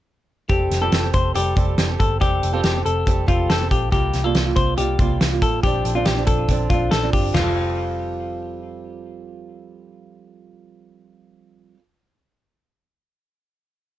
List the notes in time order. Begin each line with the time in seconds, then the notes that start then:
0.48 F1 G3 C4 G4 A4, kick, closed hi-hat
0.71 F1, snare, closed hi-hat
0.81 F3 G3 C4 G4 A4
0.92 F1, snare, closed hi-hat
1.02 C4 G4 A4
1.14 F1 C5, kick, closed hi-hat
1.34 F1 G3 C4 G4 A4, closed hi-hat
1.55 F1 G3 C4 G4 A4, kick, closed hi-hat
1.78 F1, snare, closed hi-hat
1.88 C4 G4 A4
2.00 G1 A4, kick, closed hi-hat
2.20 F1 G3 C4 G4 A4, kick, closed hi-hat
2.43 F1, closed hi-hat
2.53 F3 G3 C4 F4 G4 A4
2.64 F1 G4, snare, closed hi-hat
2.73 C4 G4 A4
2.86 F1 A4, closed hi-hat
3.06 F1 G3 C4 G4 A4, kick, closed hi-hat
3.26 F1 G3 C4 F4 G4 A4, kick, closed hi-hat
3.50 F1 A4, snare, closed hi-hat
3.59 C4 G4 A4
3.71 A#1 G4, kick, closed hi-hat
3.91 C2 C3 G3 A#3 F4 G4, kick, closed hi-hat
4.14 C2, snare, closed hi-hat
4.24 C3 G3 A#3 F4 A4
4.35 C2, snare, closed hi-hat
4.44 G3 A#3 F4
4.56 C2 C5, kick, closed hi-hat
4.77 C2 C3 G3 A#3 F4 G4, closed hi-hat
4.98 C2 C3 G3 A#3 F4, kick, closed hi-hat
5.21 C2, snare, closed hi-hat
5.31 G3 A#3 F4
5.42 A1 A4, kick, closed hi-hat
5.63 A#1 D3 F3 C4 D4 G4, kick, closed hi-hat
5.85 A#1, closed hi-hat
5.95 A#2 D3 F3 C4 D4 F4
6.06 A#1 G4, snare, closed hi-hat
6.17 F3 C4 D4
6.27 A#1 A4, kick, closed hi-hat
6.48 A#1 D3 F3 C4 D4, kick, closed hi-hat
6.70 A#1 D3 F3 C4 D4 F4, kick, closed hi-hat
6.91 A#1 A4, snare, closed hi-hat
7.03 F3 C4 D4
7.13 G1 G4, kick, open hi-hat
7.33 F1 F3 G3 F4, snare, floor tom, china
7.38 C4 F4
7.42 A4